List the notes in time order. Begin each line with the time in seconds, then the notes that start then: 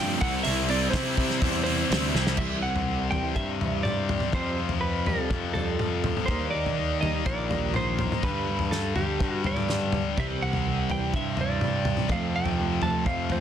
Already playing: F2 G2 C3 F3 A3 C4 G5
0.00 F3 A3 C4
0.21 C2 C3 G3 C4 E4 F#5, kick, open hi-hat
0.25 E4
0.43 C2 C3 G3 C4 E4 E5, open hi-hat
0.69 G3 C4 E4 D5, open hi-hat
0.90 C3 C5, kick, open hi-hat
0.94 G3 C4 E4, snare
1.16 C3 G3 C4 E4, kick, open hi-hat
1.30 snare
1.41 E2 C3 G3 C4 E4, kick, open hi-hat
1.64 C4 E4 C5, open hi-hat
1.68 G3
1.89 D2 C3 G3 C4 E4, snare, open hi-hat
2.14 C2 G3 C4 E4, snare
2.27 snare
2.37 C2 C3 E3 G3 C4 E5, kick, floor tom, crash
2.63 C3 E3 F#5
2.76 floor tom
2.88 C3 E3
3.11 C3 E3 G3 G5, floor tom
3.36 G2 C3 E3 E5, kick
3.61 C3 E3 G3, floor tom
3.83 C3 E3 D5, mid tom
4.09 C3 E3, floor tom, mid tom
4.20 mid tom
4.32 F2 C3 F3 G3 C4 C5, kick, floor tom
4.59 F3 G3
4.69 floor tom
4.81 F3 G3 B4
5.06 F3 G3 C4 A4, floor tom
5.30 F2 F3, kick
5.54 F3 G3 C4 A4, floor tom
5.79 F3 G3, mid tom
6.04 F3 G3, floor tom, mid tom
6.17 mid tom
6.26 D#2 D#3 G3 A#3 D#4 C5, kick, floor tom
6.51 D#3 G3 D5
6.66 floor tom
6.77 D#3 G3
7.01 D#3 G3 A#3 D#5, floor tom
7.26 A#1 D#3 G3 D5, kick
7.49 D#3 G3 A#3, floor tom
7.74 D#3 G3 C5, mid tom
7.99 D#3 G3, floor tom, mid tom
8.12 mid tom
8.23 G2 D3 G3 B4, kick, floor tom
8.27 G3
8.48 G2 D3
8.59 floor tom
8.71 G2 D3 A4, snare
8.96 G2 D3 G3 G4, floor tom
9.20 G2 D3, kick
9.30 F#4
9.44 G2 D3 G3 D5, floor tom
9.57 mid tom
9.69 G2 D3, snare, mid tom
9.92 G2 D3, floor tom, mid tom
10.18 C2 C3 E3 G3 C4 E5, kick, floor tom
10.42 C3 E3 F#5
10.53 floor tom
10.66 C3 E3
10.90 C3 E3 G3 G5, floor tom
11.14 G2 E5, kick
11.37 C3 E3 G3 D5, floor tom
11.61 C3 E3, mid tom
11.85 C3 E3, floor tom, mid tom
11.97 mid tom
12.08 F2 C3 F3, kick, floor tom
12.12 A3 C4 F5
12.35 F3 A3 G5
12.46 floor tom
12.59 F3 A3
12.82 F3 A3 C4 A5, floor tom
13.06 F2 F3 A3 F5, kick
13.30 F3 A3 C4 C5, floor tom